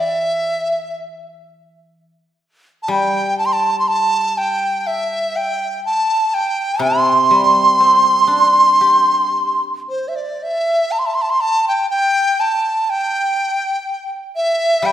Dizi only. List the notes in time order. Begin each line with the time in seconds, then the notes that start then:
0.00 E5
2.83 A5
2.90 G5
3.38 A5
3.46 C6
3.53 A5
3.80 C6
3.88 A5
4.38 G5
4.87 E5
5.36 G5
5.85 A5
6.34 G5
6.82 C6
9.90 C5
10.08 E5
10.16 D5
10.43 E5
10.91 A5
10.99 C6
11.06 A5
11.14 C6
11.22 A5
11.30 C6
11.41 A5
11.68 G5
11.90 G5
12.40 A5
12.90 G5
14.36 E5
14.86 G5